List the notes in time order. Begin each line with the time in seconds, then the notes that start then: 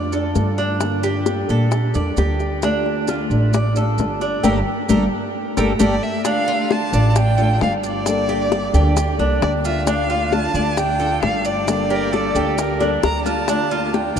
Already playing: F2 D5
0.12 A3 D4 F4 A4, high bongo, maracas
0.35 G2 D3 A3 D4 F4, high bongo, low bongo, maracas
0.58 D4, high bongo, maracas
0.80 D3 G3 A#3 D4 A4, high bongo, maracas
1.03 G4, high bongo, maracas
1.26 G3 A#3 D4 A4, high bongo, maracas
1.48 A#2 G3 A#3 D4 A4, maracas
1.71 muted nylon-string guitar stroke, high bongo, maracas
1.94 E2 G3 A#3 D4 A4 D5, high bongo, maracas
2.16 D2 G3 A#3 D4 G4 A4, high bongo, low bongo, maracas
2.40 high bongo, maracas
2.62 D3 A3 D4 F4, high bongo, maracas
2.86 high bongo
3.07 D3 A3 D4 F4, high bongo, maracas
3.30 A1 A3 D4 F4, maracas
3.53 D5, muted nylon-string guitar stroke, high bongo, maracas
3.75 A3 D4 F4 A4, high bongo, maracas
3.97 G1 D3 A3 D4 F4, high bongo, low bongo, maracas
4.21 D4, high bongo, maracas
4.43 G1 A3 A#3 D4 G4 A4 A#4, low bongo, maracas
4.88 G1 A3 A#3 D4 G4 A4 A#4, low bongo, maracas
5.57 G1 A3 A#3 D4 G4 A4 A#4, low bongo, maracas
5.79 G1 A3 A#3 D4 G4 A4 A#4 D5, low bongo, maracas
6.03 E5
6.25 D3 A3 D4 F4 F5, high bongo, maracas
6.48 F4, maracas
6.70 D3 A3 D4 F4 A5, high bongo, maracas
6.92 A1 A3 D4 F4 D5, maracas
7.10 A5
7.15 G5, muted nylon-string guitar stroke, high bongo, maracas
7.38 A3 D4 F4 A4, maracas
7.60 G1 D3 A3 D4 F4 F5, high bongo, low bongo, maracas
7.83 D5, maracas
8.06 D3 G3 A#3 D4 A4, high bongo, maracas
8.29 G4, high bongo, maracas
8.51 G3 A#3 D4 A4 D5, high bongo, maracas
8.73 D2 G3 A#3 D4 G4 A4, high bongo, maracas
8.96 muted nylon-string guitar stroke, high bongo, maracas
9.18 C2 G3 A#3 D4 A4, high bongo, maracas
9.41 D2 G3 A#3 D4 A4 D5, high bongo, low bongo, maracas
9.65 F4 E5, maracas
9.85 D3 A3 D4 F4 F5, high bongo, maracas
10.10 F4, maracas
10.31 D3 A3 D4 F4 A5, high bongo, maracas
10.54 D2 A3 D4 F4 D5, maracas
10.77 G5, muted nylon-string guitar stroke, high bongo, maracas
10.99 A3 D4 F4 A4, maracas
11.21 G1 D3 A3 D4 F4 F5, high bongo, low bongo, maracas
11.45 D5, maracas
11.67 D3 G3 A#3 D4 A4, high bongo, maracas
11.90 G4 A#4, high bongo, maracas
12.12 G3 A#3 D4 A4 D5, high bongo, maracas
12.35 D2 G3 A#3 D4 G4 A4, high bongo, maracas
12.57 A#4, muted nylon-string guitar stroke, high bongo, maracas
12.80 G3 A#3 D4 A4, high bongo, maracas
13.03 D2 G3 A#3 D4 A4 A#5, high bongo, maracas
13.26 F4 A5, low bongo, maracas
13.48 D3 A3 D4 F4, high bongo, maracas
13.71 F4, maracas
13.93 D3 A3 D4 F4 G5, high bongo, maracas
14.16 A1 F4 D5, maracas